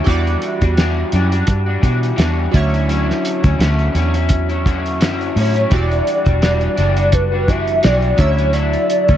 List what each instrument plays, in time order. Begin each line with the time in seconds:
0.04 fingered electric bass E2, clean electric guitar E3 G3, synth keys E4 F#4 G4, kick, closed hi-hat
0.08 clean electric guitar D4 F#4, synth keys D5
0.27 closed hi-hat
0.42 closed hi-hat
0.61 fingered electric bass E2, clean electric guitar G3 D4 F#4, kick, closed hi-hat
0.77 clean electric guitar E3 G3 D4 F#4, snare, closed hi-hat
1.12 fingered electric bass F#2, clean electric guitar E3 G3 D4 F#4, closed hi-hat
1.31 clean electric guitar G3 D4 F#4, closed hi-hat
1.47 fingered electric bass G2, kick, closed hi-hat
1.66 clean electric guitar G3 D4 F#4
1.82 fingered electric bass B2, clean electric guitar E3 G3 D4 F#4, kick, closed hi-hat
2.03 closed hi-hat
2.16 fingered electric bass E2, clean electric guitar E3 G3 D4 F#4, snare, closed hi-hat
2.51 fingered electric bass D2, clean electric guitar D3 F#3 C#4 E4, synth keys F#3 D4 E4, kick, closed hi-hat
2.57 synth keys C#5
2.72 clean electric guitar F#3 C#4 E4, closed hi-hat
2.88 clean electric guitar D3 F#3 C#4 E4, closed hi-hat
3.10 snare
3.25 closed hi-hat
3.43 fingered electric bass D2, clean electric guitar F#3 C#4 E4, kick, closed hi-hat
3.59 fingered electric bass D2, clean electric guitar D3 F#3 C#4 E4, snare, closed hi-hat
3.79 closed hi-hat
3.95 fingered electric bass E2, clean electric guitar D3 F#3 C#4 E4, closed hi-hat
4.14 clean electric guitar F#3 C#4 E4, closed hi-hat
4.29 kick, closed hi-hat
4.49 clean electric guitar C#4 E4, closed hi-hat
4.53 clean electric guitar F#3
4.65 clean electric guitar D3 F#3 C#4 E4, kick, closed hi-hat
4.86 closed hi-hat
5.00 fingered electric bass F#2, clean electric guitar D3 F#3 C#4 E4, snare, closed hi-hat
5.21 closed hi-hat
5.36 fingered electric bass A2, clean electric guitar D3 F#3 C#4 E4, soft synth lead C#5, open hi-hat
5.55 clean electric guitar F#3 C#4 E4, closed hi-hat
5.70 fingered electric bass E1, clean electric guitar E3 G3 D4 F#4, synth keys G3 E4 F#4, soft synth lead D5, kick, closed hi-hat
5.75 synth keys D5
5.92 closed hi-hat
6.07 closed hi-hat
6.25 fingered electric bass E1, clean electric guitar G3 D4 F#4, kick, closed hi-hat
6.41 clean electric guitar E3 G3 D4 F#4, snare, closed hi-hat
6.61 closed hi-hat
6.76 fingered electric bass F#1, clean electric guitar E3 G3 D4 F#4, closed hi-hat
6.96 clean electric guitar G3 D4 F#4, closed hi-hat
7.12 soft synth lead B4, kick, closed hi-hat
7.32 clean electric guitar G3 D4 F#4
7.48 clean electric guitar E3 G3 D4 F#4, soft synth lead E5, kick, closed hi-hat
7.68 closed hi-hat
7.83 fingered electric bass B1, clean electric guitar E3 G3 D4 F#4, soft synth lead D5, snare, closed hi-hat
8.02 closed hi-hat
8.17 fingered electric bass D2, clean electric guitar D3 F#3 C#4, synth keys F#3 D4 E4, soft synth lead C#5, kick, closed hi-hat
8.21 clean electric guitar E4, synth keys E5
8.37 clean electric guitar F#3 C#4 E4, closed hi-hat
8.53 clean electric guitar D3 F#3 E4, soft synth lead D5, closed hi-hat
8.73 closed hi-hat
8.90 closed hi-hat
9.08 fingered electric bass D2, clean electric guitar F#3 C#4 E4, kick, closed hi-hat